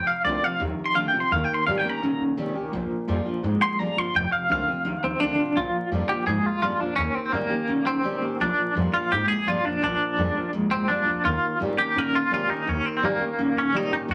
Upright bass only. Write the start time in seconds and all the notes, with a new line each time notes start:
0.07 muted upright bass stroke
0.25 C2
0.43 muted upright bass stroke
0.61 D#2
0.79 muted upright bass stroke
0.97 D2
1.14 C2
1.31 D#2
1.50 muted upright bass stroke
1.68 A#2
1.86 muted upright bass stroke
2.02 C3
2.38 C3
2.56 C2
2.74 A#1
2.91 muted upright bass stroke
3.08 F2
3.26 muted upright bass stroke
3.43 G#2
3.61 muted upright bass stroke
3.79 G2
3.97 G1
4.15 F1
4.32 muted upright bass stroke
4.50 C2
4.85 D2
5.03 D#2
5.21 D2
5.38 A1
5.57 A#1
5.74 muted upright bass stroke
5.91 F2
6.09 muted upright bass stroke
6.27 G#2
6.44 muted upright bass stroke
6.62 G2
6.80 F2
6.97 D#2
7.15 muted upright bass stroke
7.33 A#2
7.51 muted upright bass stroke
7.69 C3
7.86 C#3
8.04 C3
8.22 A1
8.40 A#1
8.58 muted upright bass stroke
8.76 F2
8.94 muted upright bass stroke
9.12 G#2
9.30 muted upright bass stroke
9.47 G2
9.65 F2
9.83 A#1
10.01 muted upright bass stroke
10.18 F2
10.36 muted upright bass stroke
10.53 G2
10.71 G#2
10.89 G2
11.07 D2
11.25 D#2
11.43 muted upright bass stroke
11.61 A#2
11.79 muted upright bass stroke
11.96 C#3
12.15 muted upright bass stroke
12.32 C3
12.49 A#2
12.68 D#2
12.86 muted upright bass stroke
13.03 A#2
13.20 muted upright bass stroke
13.38 C3
13.56 C#3
13.73 C3
13.92 G#2
14.09 D#2